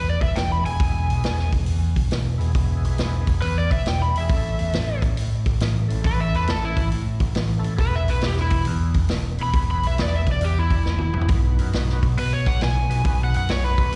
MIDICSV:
0, 0, Header, 1, 5, 480
1, 0, Start_track
1, 0, Key_signature, 4, "major"
1, 0, Tempo, 437637
1, 874, Time_signature, 4, 2, 24, 8
1, 15308, End_track
2, 0, Start_track
2, 0, Title_t, "Electric slide guitar"
2, 0, Program_c, 0, 29
2, 103, Note_on_c, 0, 74, 80
2, 243, Note_off_c, 0, 74, 0
2, 247, Note_on_c, 0, 76, 86
2, 391, Note_on_c, 0, 79, 79
2, 396, Note_off_c, 0, 76, 0
2, 548, Note_off_c, 0, 79, 0
2, 570, Note_on_c, 0, 83, 77
2, 718, Note_off_c, 0, 83, 0
2, 722, Note_on_c, 0, 80, 99
2, 1648, Note_off_c, 0, 80, 0
2, 3748, Note_on_c, 0, 71, 93
2, 3904, Note_off_c, 0, 71, 0
2, 3926, Note_on_c, 0, 74, 79
2, 4073, Note_off_c, 0, 74, 0
2, 4086, Note_on_c, 0, 76, 93
2, 4233, Note_off_c, 0, 76, 0
2, 4256, Note_on_c, 0, 79, 95
2, 4398, Note_off_c, 0, 79, 0
2, 4409, Note_on_c, 0, 83, 78
2, 4555, Note_off_c, 0, 83, 0
2, 4581, Note_on_c, 0, 76, 98
2, 5495, Note_off_c, 0, 76, 0
2, 6651, Note_on_c, 0, 71, 93
2, 6794, Note_off_c, 0, 71, 0
2, 6804, Note_on_c, 0, 76, 97
2, 6950, Note_off_c, 0, 76, 0
2, 6971, Note_on_c, 0, 71, 90
2, 7114, Note_off_c, 0, 71, 0
2, 7127, Note_on_c, 0, 69, 80
2, 7271, Note_off_c, 0, 69, 0
2, 7288, Note_on_c, 0, 64, 89
2, 7535, Note_off_c, 0, 64, 0
2, 8563, Note_on_c, 0, 71, 95
2, 8709, Note_off_c, 0, 71, 0
2, 8727, Note_on_c, 0, 76, 91
2, 8871, Note_off_c, 0, 76, 0
2, 8881, Note_on_c, 0, 71, 98
2, 9028, Note_off_c, 0, 71, 0
2, 9066, Note_on_c, 0, 67, 82
2, 9200, Note_off_c, 0, 67, 0
2, 9227, Note_on_c, 0, 64, 92
2, 9464, Note_off_c, 0, 64, 0
2, 10338, Note_on_c, 0, 83, 104
2, 10476, Note_off_c, 0, 83, 0
2, 10650, Note_on_c, 0, 83, 98
2, 10792, Note_off_c, 0, 83, 0
2, 10826, Note_on_c, 0, 76, 91
2, 10960, Note_off_c, 0, 76, 0
2, 10991, Note_on_c, 0, 74, 74
2, 11123, Note_off_c, 0, 74, 0
2, 11137, Note_on_c, 0, 76, 96
2, 11276, Note_off_c, 0, 76, 0
2, 11316, Note_on_c, 0, 74, 74
2, 11446, Note_off_c, 0, 74, 0
2, 11454, Note_on_c, 0, 67, 86
2, 11594, Note_off_c, 0, 67, 0
2, 11613, Note_on_c, 0, 64, 90
2, 12376, Note_off_c, 0, 64, 0
2, 13368, Note_on_c, 0, 71, 100
2, 13514, Note_off_c, 0, 71, 0
2, 13524, Note_on_c, 0, 73, 96
2, 13672, Note_off_c, 0, 73, 0
2, 13681, Note_on_c, 0, 78, 94
2, 13831, Note_off_c, 0, 78, 0
2, 13861, Note_on_c, 0, 80, 98
2, 14469, Note_off_c, 0, 80, 0
2, 14521, Note_on_c, 0, 78, 90
2, 14647, Note_off_c, 0, 78, 0
2, 14660, Note_on_c, 0, 78, 97
2, 14803, Note_off_c, 0, 78, 0
2, 14806, Note_on_c, 0, 73, 78
2, 14956, Note_off_c, 0, 73, 0
2, 14962, Note_on_c, 0, 71, 100
2, 15308, Note_off_c, 0, 71, 0
2, 15308, End_track
3, 0, Start_track
3, 0, Title_t, "Tonewheel organ"
3, 0, Program_c, 1, 16
3, 717, Note_on_c, 1, 56, 67
3, 722, Note_on_c, 1, 59, 64
3, 723, Note_on_c, 1, 64, 65
3, 729, Note_on_c, 1, 68, 82
3, 848, Note_off_c, 1, 56, 0
3, 850, Note_off_c, 1, 59, 0
3, 851, Note_off_c, 1, 64, 0
3, 854, Note_off_c, 1, 68, 0
3, 886, Note_on_c, 1, 56, 66
3, 889, Note_on_c, 1, 59, 65
3, 895, Note_on_c, 1, 64, 62
3, 903, Note_on_c, 1, 68, 76
3, 1728, Note_off_c, 1, 56, 0
3, 1729, Note_off_c, 1, 59, 0
3, 1732, Note_off_c, 1, 64, 0
3, 1736, Note_off_c, 1, 68, 0
3, 2610, Note_on_c, 1, 64, 71
3, 2622, Note_on_c, 1, 59, 79
3, 2624, Note_on_c, 1, 56, 81
3, 2633, Note_on_c, 1, 68, 94
3, 2753, Note_off_c, 1, 64, 0
3, 2759, Note_off_c, 1, 59, 0
3, 2760, Note_off_c, 1, 56, 0
3, 2764, Note_off_c, 1, 68, 0
3, 2796, Note_on_c, 1, 64, 72
3, 2797, Note_on_c, 1, 56, 80
3, 2803, Note_on_c, 1, 59, 74
3, 2808, Note_on_c, 1, 68, 89
3, 3642, Note_off_c, 1, 56, 0
3, 3642, Note_off_c, 1, 64, 0
3, 3645, Note_off_c, 1, 59, 0
3, 3648, Note_off_c, 1, 68, 0
3, 4602, Note_on_c, 1, 59, 63
3, 4607, Note_on_c, 1, 64, 65
3, 4608, Note_on_c, 1, 56, 66
3, 4610, Note_on_c, 1, 68, 74
3, 4708, Note_off_c, 1, 59, 0
3, 4710, Note_off_c, 1, 64, 0
3, 4711, Note_off_c, 1, 56, 0
3, 4712, Note_off_c, 1, 68, 0
3, 4731, Note_on_c, 1, 57, 66
3, 4748, Note_on_c, 1, 69, 67
3, 4749, Note_on_c, 1, 61, 64
3, 4754, Note_on_c, 1, 64, 58
3, 5568, Note_off_c, 1, 57, 0
3, 5577, Note_off_c, 1, 61, 0
3, 5577, Note_off_c, 1, 69, 0
3, 5580, Note_off_c, 1, 64, 0
3, 6445, Note_on_c, 1, 57, 81
3, 6456, Note_on_c, 1, 69, 94
3, 6460, Note_on_c, 1, 64, 72
3, 6465, Note_on_c, 1, 61, 72
3, 6588, Note_off_c, 1, 57, 0
3, 6589, Note_off_c, 1, 69, 0
3, 6596, Note_off_c, 1, 64, 0
3, 6598, Note_off_c, 1, 61, 0
3, 6601, Note_on_c, 1, 57, 68
3, 6602, Note_on_c, 1, 69, 73
3, 6612, Note_on_c, 1, 61, 64
3, 6618, Note_on_c, 1, 64, 58
3, 7462, Note_off_c, 1, 57, 0
3, 7463, Note_off_c, 1, 69, 0
3, 7468, Note_off_c, 1, 61, 0
3, 7470, Note_off_c, 1, 64, 0
3, 8324, Note_on_c, 1, 57, 89
3, 8330, Note_on_c, 1, 64, 73
3, 8331, Note_on_c, 1, 69, 94
3, 8334, Note_on_c, 1, 61, 73
3, 8486, Note_off_c, 1, 57, 0
3, 8489, Note_off_c, 1, 64, 0
3, 8490, Note_off_c, 1, 69, 0
3, 8491, Note_off_c, 1, 61, 0
3, 8515, Note_on_c, 1, 68, 62
3, 8519, Note_on_c, 1, 64, 59
3, 8523, Note_on_c, 1, 71, 77
3, 8533, Note_on_c, 1, 59, 70
3, 9378, Note_off_c, 1, 68, 0
3, 9380, Note_off_c, 1, 64, 0
3, 9382, Note_off_c, 1, 71, 0
3, 9387, Note_off_c, 1, 59, 0
3, 10293, Note_on_c, 1, 59, 70
3, 10301, Note_on_c, 1, 71, 79
3, 10312, Note_on_c, 1, 68, 63
3, 10313, Note_on_c, 1, 64, 68
3, 10430, Note_off_c, 1, 59, 0
3, 10434, Note_off_c, 1, 71, 0
3, 10440, Note_off_c, 1, 64, 0
3, 10440, Note_off_c, 1, 68, 0
3, 10485, Note_on_c, 1, 59, 63
3, 10489, Note_on_c, 1, 68, 60
3, 10491, Note_on_c, 1, 71, 74
3, 10492, Note_on_c, 1, 64, 63
3, 11324, Note_off_c, 1, 59, 0
3, 11326, Note_off_c, 1, 68, 0
3, 11326, Note_off_c, 1, 71, 0
3, 11327, Note_off_c, 1, 64, 0
3, 12208, Note_on_c, 1, 59, 65
3, 12225, Note_on_c, 1, 71, 74
3, 12231, Note_on_c, 1, 64, 61
3, 12240, Note_on_c, 1, 68, 60
3, 12349, Note_off_c, 1, 59, 0
3, 12357, Note_off_c, 1, 71, 0
3, 12360, Note_off_c, 1, 64, 0
3, 12365, Note_off_c, 1, 68, 0
3, 12397, Note_on_c, 1, 59, 81
3, 12401, Note_on_c, 1, 66, 80
3, 12405, Note_on_c, 1, 71, 85
3, 12408, Note_on_c, 1, 63, 71
3, 13242, Note_off_c, 1, 59, 0
3, 13244, Note_off_c, 1, 66, 0
3, 13247, Note_off_c, 1, 71, 0
3, 13248, Note_off_c, 1, 63, 0
3, 14140, Note_on_c, 1, 59, 72
3, 14147, Note_on_c, 1, 66, 64
3, 14150, Note_on_c, 1, 71, 79
3, 14152, Note_on_c, 1, 63, 63
3, 14278, Note_off_c, 1, 59, 0
3, 14282, Note_off_c, 1, 66, 0
3, 14283, Note_off_c, 1, 71, 0
3, 14284, Note_off_c, 1, 63, 0
3, 14299, Note_on_c, 1, 63, 60
3, 14301, Note_on_c, 1, 59, 68
3, 14307, Note_on_c, 1, 66, 64
3, 14320, Note_on_c, 1, 71, 70
3, 15159, Note_off_c, 1, 63, 0
3, 15160, Note_off_c, 1, 59, 0
3, 15163, Note_off_c, 1, 66, 0
3, 15170, Note_off_c, 1, 71, 0
3, 15308, End_track
4, 0, Start_track
4, 0, Title_t, "Picked electric bass"
4, 0, Program_c, 2, 34
4, 0, Note_on_c, 2, 40, 86
4, 220, Note_off_c, 2, 40, 0
4, 237, Note_on_c, 2, 28, 93
4, 386, Note_off_c, 2, 28, 0
4, 391, Note_on_c, 2, 28, 87
4, 693, Note_off_c, 2, 28, 0
4, 732, Note_on_c, 2, 28, 83
4, 874, Note_off_c, 2, 28, 0
4, 879, Note_on_c, 2, 28, 85
4, 1177, Note_off_c, 2, 28, 0
4, 1219, Note_on_c, 2, 35, 84
4, 1357, Note_off_c, 2, 35, 0
4, 1365, Note_on_c, 2, 28, 84
4, 1659, Note_off_c, 2, 28, 0
4, 1686, Note_on_c, 2, 28, 75
4, 1830, Note_off_c, 2, 28, 0
4, 1856, Note_on_c, 2, 40, 85
4, 2145, Note_off_c, 2, 40, 0
4, 2153, Note_on_c, 2, 28, 88
4, 2303, Note_off_c, 2, 28, 0
4, 2330, Note_on_c, 2, 28, 85
4, 2622, Note_off_c, 2, 28, 0
4, 2645, Note_on_c, 2, 28, 80
4, 2789, Note_off_c, 2, 28, 0
4, 2795, Note_on_c, 2, 28, 86
4, 3093, Note_off_c, 2, 28, 0
4, 3123, Note_on_c, 2, 35, 85
4, 3268, Note_off_c, 2, 35, 0
4, 3284, Note_on_c, 2, 28, 85
4, 3578, Note_off_c, 2, 28, 0
4, 3598, Note_on_c, 2, 28, 75
4, 3745, Note_off_c, 2, 28, 0
4, 3766, Note_on_c, 2, 40, 85
4, 4059, Note_off_c, 2, 40, 0
4, 4076, Note_on_c, 2, 28, 93
4, 4223, Note_off_c, 2, 28, 0
4, 4245, Note_on_c, 2, 28, 82
4, 4538, Note_off_c, 2, 28, 0
4, 4552, Note_on_c, 2, 28, 85
4, 4701, Note_off_c, 2, 28, 0
4, 4722, Note_on_c, 2, 33, 89
4, 5016, Note_off_c, 2, 33, 0
4, 5029, Note_on_c, 2, 40, 77
4, 5179, Note_off_c, 2, 40, 0
4, 5196, Note_on_c, 2, 33, 85
4, 5492, Note_off_c, 2, 33, 0
4, 5517, Note_on_c, 2, 33, 73
4, 5660, Note_off_c, 2, 33, 0
4, 5666, Note_on_c, 2, 45, 80
4, 5967, Note_off_c, 2, 45, 0
4, 5995, Note_on_c, 2, 33, 86
4, 6142, Note_off_c, 2, 33, 0
4, 6163, Note_on_c, 2, 33, 81
4, 6456, Note_off_c, 2, 33, 0
4, 6484, Note_on_c, 2, 33, 85
4, 6626, Note_off_c, 2, 33, 0
4, 6635, Note_on_c, 2, 33, 87
4, 6931, Note_off_c, 2, 33, 0
4, 6968, Note_on_c, 2, 40, 83
4, 7108, Note_off_c, 2, 40, 0
4, 7116, Note_on_c, 2, 33, 92
4, 7411, Note_off_c, 2, 33, 0
4, 7426, Note_on_c, 2, 33, 76
4, 7576, Note_off_c, 2, 33, 0
4, 7608, Note_on_c, 2, 45, 84
4, 7894, Note_off_c, 2, 45, 0
4, 7901, Note_on_c, 2, 33, 93
4, 8053, Note_off_c, 2, 33, 0
4, 8064, Note_on_c, 2, 33, 89
4, 8364, Note_off_c, 2, 33, 0
4, 8376, Note_on_c, 2, 33, 84
4, 8530, Note_off_c, 2, 33, 0
4, 8547, Note_on_c, 2, 28, 87
4, 8846, Note_off_c, 2, 28, 0
4, 8864, Note_on_c, 2, 35, 86
4, 9011, Note_off_c, 2, 35, 0
4, 9018, Note_on_c, 2, 28, 88
4, 9321, Note_off_c, 2, 28, 0
4, 9345, Note_on_c, 2, 28, 73
4, 9494, Note_off_c, 2, 28, 0
4, 9513, Note_on_c, 2, 40, 96
4, 9808, Note_off_c, 2, 40, 0
4, 9826, Note_on_c, 2, 28, 88
4, 9975, Note_off_c, 2, 28, 0
4, 9986, Note_on_c, 2, 28, 88
4, 10285, Note_off_c, 2, 28, 0
4, 10308, Note_on_c, 2, 28, 82
4, 10456, Note_off_c, 2, 28, 0
4, 10462, Note_on_c, 2, 28, 88
4, 10763, Note_off_c, 2, 28, 0
4, 10786, Note_on_c, 2, 35, 91
4, 10935, Note_off_c, 2, 35, 0
4, 10945, Note_on_c, 2, 28, 82
4, 11244, Note_off_c, 2, 28, 0
4, 11264, Note_on_c, 2, 28, 79
4, 11414, Note_off_c, 2, 28, 0
4, 11423, Note_on_c, 2, 40, 93
4, 11724, Note_off_c, 2, 40, 0
4, 11742, Note_on_c, 2, 28, 91
4, 11893, Note_off_c, 2, 28, 0
4, 11925, Note_on_c, 2, 28, 81
4, 12216, Note_off_c, 2, 28, 0
4, 12244, Note_on_c, 2, 28, 87
4, 12380, Note_off_c, 2, 28, 0
4, 12387, Note_on_c, 2, 35, 90
4, 12687, Note_off_c, 2, 35, 0
4, 12713, Note_on_c, 2, 42, 78
4, 12860, Note_off_c, 2, 42, 0
4, 12891, Note_on_c, 2, 35, 79
4, 13180, Note_off_c, 2, 35, 0
4, 13203, Note_on_c, 2, 35, 76
4, 13346, Note_off_c, 2, 35, 0
4, 13359, Note_on_c, 2, 47, 87
4, 13655, Note_off_c, 2, 47, 0
4, 13675, Note_on_c, 2, 35, 91
4, 13814, Note_off_c, 2, 35, 0
4, 13820, Note_on_c, 2, 35, 90
4, 14126, Note_off_c, 2, 35, 0
4, 14148, Note_on_c, 2, 35, 84
4, 14300, Note_off_c, 2, 35, 0
4, 14314, Note_on_c, 2, 35, 83
4, 14615, Note_off_c, 2, 35, 0
4, 14644, Note_on_c, 2, 42, 80
4, 14791, Note_off_c, 2, 42, 0
4, 14809, Note_on_c, 2, 35, 87
4, 15105, Note_off_c, 2, 35, 0
4, 15126, Note_on_c, 2, 35, 77
4, 15268, Note_off_c, 2, 35, 0
4, 15275, Note_on_c, 2, 47, 88
4, 15308, Note_off_c, 2, 47, 0
4, 15308, End_track
5, 0, Start_track
5, 0, Title_t, "Drums"
5, 230, Note_on_c, 9, 46, 52
5, 233, Note_on_c, 9, 36, 83
5, 340, Note_off_c, 9, 46, 0
5, 343, Note_off_c, 9, 36, 0
5, 394, Note_on_c, 9, 46, 66
5, 405, Note_on_c, 9, 38, 95
5, 504, Note_off_c, 9, 46, 0
5, 515, Note_off_c, 9, 38, 0
5, 720, Note_on_c, 9, 46, 56
5, 830, Note_off_c, 9, 46, 0
5, 876, Note_on_c, 9, 36, 107
5, 876, Note_on_c, 9, 46, 74
5, 986, Note_off_c, 9, 36, 0
5, 986, Note_off_c, 9, 46, 0
5, 1206, Note_on_c, 9, 46, 52
5, 1315, Note_off_c, 9, 46, 0
5, 1356, Note_on_c, 9, 46, 74
5, 1367, Note_on_c, 9, 38, 107
5, 1466, Note_off_c, 9, 46, 0
5, 1477, Note_off_c, 9, 38, 0
5, 1523, Note_on_c, 9, 38, 37
5, 1633, Note_off_c, 9, 38, 0
5, 1671, Note_on_c, 9, 46, 55
5, 1673, Note_on_c, 9, 36, 77
5, 1780, Note_off_c, 9, 46, 0
5, 1783, Note_off_c, 9, 36, 0
5, 1823, Note_on_c, 9, 46, 63
5, 1932, Note_off_c, 9, 46, 0
5, 2153, Note_on_c, 9, 36, 85
5, 2161, Note_on_c, 9, 46, 55
5, 2263, Note_off_c, 9, 36, 0
5, 2271, Note_off_c, 9, 46, 0
5, 2313, Note_on_c, 9, 46, 65
5, 2324, Note_on_c, 9, 38, 100
5, 2423, Note_off_c, 9, 46, 0
5, 2433, Note_off_c, 9, 38, 0
5, 2638, Note_on_c, 9, 46, 50
5, 2748, Note_off_c, 9, 46, 0
5, 2796, Note_on_c, 9, 36, 105
5, 2806, Note_on_c, 9, 46, 69
5, 2906, Note_off_c, 9, 36, 0
5, 2915, Note_off_c, 9, 46, 0
5, 3121, Note_on_c, 9, 46, 50
5, 3231, Note_off_c, 9, 46, 0
5, 3270, Note_on_c, 9, 46, 70
5, 3281, Note_on_c, 9, 38, 101
5, 3379, Note_off_c, 9, 46, 0
5, 3390, Note_off_c, 9, 38, 0
5, 3586, Note_on_c, 9, 46, 57
5, 3590, Note_on_c, 9, 36, 81
5, 3696, Note_off_c, 9, 46, 0
5, 3700, Note_off_c, 9, 36, 0
5, 3751, Note_on_c, 9, 46, 71
5, 3861, Note_off_c, 9, 46, 0
5, 4069, Note_on_c, 9, 46, 51
5, 4070, Note_on_c, 9, 36, 76
5, 4179, Note_off_c, 9, 46, 0
5, 4180, Note_off_c, 9, 36, 0
5, 4231, Note_on_c, 9, 46, 75
5, 4242, Note_on_c, 9, 38, 103
5, 4341, Note_off_c, 9, 46, 0
5, 4352, Note_off_c, 9, 38, 0
5, 4558, Note_on_c, 9, 46, 58
5, 4667, Note_off_c, 9, 46, 0
5, 4710, Note_on_c, 9, 46, 77
5, 4711, Note_on_c, 9, 36, 107
5, 4819, Note_off_c, 9, 46, 0
5, 4821, Note_off_c, 9, 36, 0
5, 5032, Note_on_c, 9, 46, 55
5, 5142, Note_off_c, 9, 46, 0
5, 5192, Note_on_c, 9, 46, 80
5, 5203, Note_on_c, 9, 38, 112
5, 5302, Note_off_c, 9, 46, 0
5, 5313, Note_off_c, 9, 38, 0
5, 5509, Note_on_c, 9, 36, 82
5, 5513, Note_on_c, 9, 46, 55
5, 5618, Note_off_c, 9, 36, 0
5, 5622, Note_off_c, 9, 46, 0
5, 5671, Note_on_c, 9, 46, 75
5, 5781, Note_off_c, 9, 46, 0
5, 5989, Note_on_c, 9, 36, 84
5, 5994, Note_on_c, 9, 46, 53
5, 6099, Note_off_c, 9, 36, 0
5, 6103, Note_off_c, 9, 46, 0
5, 6146, Note_on_c, 9, 46, 68
5, 6157, Note_on_c, 9, 38, 95
5, 6256, Note_off_c, 9, 46, 0
5, 6267, Note_off_c, 9, 38, 0
5, 6475, Note_on_c, 9, 46, 51
5, 6584, Note_off_c, 9, 46, 0
5, 6629, Note_on_c, 9, 36, 109
5, 6640, Note_on_c, 9, 46, 73
5, 6739, Note_off_c, 9, 36, 0
5, 6750, Note_off_c, 9, 46, 0
5, 6959, Note_on_c, 9, 46, 47
5, 7068, Note_off_c, 9, 46, 0
5, 7102, Note_on_c, 9, 46, 71
5, 7113, Note_on_c, 9, 38, 101
5, 7211, Note_off_c, 9, 46, 0
5, 7222, Note_off_c, 9, 38, 0
5, 7423, Note_on_c, 9, 36, 85
5, 7425, Note_on_c, 9, 46, 53
5, 7532, Note_off_c, 9, 36, 0
5, 7535, Note_off_c, 9, 46, 0
5, 7585, Note_on_c, 9, 46, 64
5, 7695, Note_off_c, 9, 46, 0
5, 7896, Note_on_c, 9, 46, 54
5, 7900, Note_on_c, 9, 36, 83
5, 8005, Note_off_c, 9, 46, 0
5, 8010, Note_off_c, 9, 36, 0
5, 8060, Note_on_c, 9, 46, 74
5, 8071, Note_on_c, 9, 38, 105
5, 8170, Note_off_c, 9, 46, 0
5, 8180, Note_off_c, 9, 38, 0
5, 8382, Note_on_c, 9, 46, 54
5, 8492, Note_off_c, 9, 46, 0
5, 8538, Note_on_c, 9, 36, 110
5, 8539, Note_on_c, 9, 46, 72
5, 8648, Note_off_c, 9, 36, 0
5, 8648, Note_off_c, 9, 46, 0
5, 8862, Note_on_c, 9, 46, 60
5, 8971, Note_off_c, 9, 46, 0
5, 9010, Note_on_c, 9, 46, 73
5, 9021, Note_on_c, 9, 38, 112
5, 9119, Note_off_c, 9, 46, 0
5, 9130, Note_off_c, 9, 38, 0
5, 9181, Note_on_c, 9, 38, 34
5, 9291, Note_off_c, 9, 38, 0
5, 9326, Note_on_c, 9, 46, 63
5, 9334, Note_on_c, 9, 36, 86
5, 9436, Note_off_c, 9, 46, 0
5, 9443, Note_off_c, 9, 36, 0
5, 9486, Note_on_c, 9, 46, 72
5, 9596, Note_off_c, 9, 46, 0
5, 9807, Note_on_c, 9, 46, 58
5, 9813, Note_on_c, 9, 36, 80
5, 9917, Note_off_c, 9, 46, 0
5, 9922, Note_off_c, 9, 36, 0
5, 9966, Note_on_c, 9, 46, 72
5, 9976, Note_on_c, 9, 38, 102
5, 10075, Note_off_c, 9, 46, 0
5, 10086, Note_off_c, 9, 38, 0
5, 10293, Note_on_c, 9, 46, 54
5, 10403, Note_off_c, 9, 46, 0
5, 10457, Note_on_c, 9, 46, 79
5, 10459, Note_on_c, 9, 36, 113
5, 10567, Note_off_c, 9, 46, 0
5, 10569, Note_off_c, 9, 36, 0
5, 10784, Note_on_c, 9, 46, 51
5, 10894, Note_off_c, 9, 46, 0
5, 10946, Note_on_c, 9, 46, 70
5, 10957, Note_on_c, 9, 38, 107
5, 11056, Note_off_c, 9, 46, 0
5, 11067, Note_off_c, 9, 38, 0
5, 11260, Note_on_c, 9, 36, 77
5, 11260, Note_on_c, 9, 46, 52
5, 11370, Note_off_c, 9, 36, 0
5, 11370, Note_off_c, 9, 46, 0
5, 11416, Note_on_c, 9, 46, 64
5, 11525, Note_off_c, 9, 46, 0
5, 11741, Note_on_c, 9, 36, 80
5, 11744, Note_on_c, 9, 46, 52
5, 11851, Note_off_c, 9, 36, 0
5, 11854, Note_off_c, 9, 46, 0
5, 11908, Note_on_c, 9, 38, 53
5, 12017, Note_off_c, 9, 38, 0
5, 12048, Note_on_c, 9, 48, 55
5, 12157, Note_off_c, 9, 48, 0
5, 12212, Note_on_c, 9, 45, 81
5, 12298, Note_on_c, 9, 43, 86
5, 12322, Note_off_c, 9, 45, 0
5, 12376, Note_on_c, 9, 46, 72
5, 12384, Note_on_c, 9, 36, 112
5, 12407, Note_off_c, 9, 43, 0
5, 12486, Note_off_c, 9, 46, 0
5, 12493, Note_off_c, 9, 36, 0
5, 12708, Note_on_c, 9, 46, 55
5, 12818, Note_off_c, 9, 46, 0
5, 12868, Note_on_c, 9, 46, 70
5, 12879, Note_on_c, 9, 38, 98
5, 12978, Note_off_c, 9, 46, 0
5, 12989, Note_off_c, 9, 38, 0
5, 13044, Note_on_c, 9, 38, 34
5, 13154, Note_off_c, 9, 38, 0
5, 13193, Note_on_c, 9, 36, 82
5, 13196, Note_on_c, 9, 46, 53
5, 13303, Note_off_c, 9, 36, 0
5, 13306, Note_off_c, 9, 46, 0
5, 13356, Note_on_c, 9, 46, 77
5, 13466, Note_off_c, 9, 46, 0
5, 13671, Note_on_c, 9, 36, 88
5, 13676, Note_on_c, 9, 46, 60
5, 13781, Note_off_c, 9, 36, 0
5, 13785, Note_off_c, 9, 46, 0
5, 13831, Note_on_c, 9, 46, 73
5, 13842, Note_on_c, 9, 38, 101
5, 13941, Note_off_c, 9, 46, 0
5, 13952, Note_off_c, 9, 38, 0
5, 14155, Note_on_c, 9, 46, 52
5, 14265, Note_off_c, 9, 46, 0
5, 14312, Note_on_c, 9, 46, 73
5, 14313, Note_on_c, 9, 36, 115
5, 14421, Note_off_c, 9, 46, 0
5, 14423, Note_off_c, 9, 36, 0
5, 14633, Note_on_c, 9, 46, 57
5, 14743, Note_off_c, 9, 46, 0
5, 14793, Note_on_c, 9, 46, 74
5, 14804, Note_on_c, 9, 38, 111
5, 14902, Note_off_c, 9, 46, 0
5, 14913, Note_off_c, 9, 38, 0
5, 15114, Note_on_c, 9, 36, 83
5, 15116, Note_on_c, 9, 46, 51
5, 15224, Note_off_c, 9, 36, 0
5, 15225, Note_off_c, 9, 46, 0
5, 15273, Note_on_c, 9, 46, 68
5, 15308, Note_off_c, 9, 46, 0
5, 15308, End_track
0, 0, End_of_file